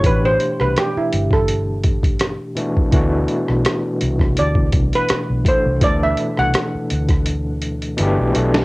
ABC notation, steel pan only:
X:1
M:4/4
L:1/16
Q:"Swing 16ths" 1/4=83
K:Dmix
V:1 name="Steel pan"
B c2 B G E2 A6 z3 | z8 d3 B3 c2 | d e2 f8- f2 z3 |]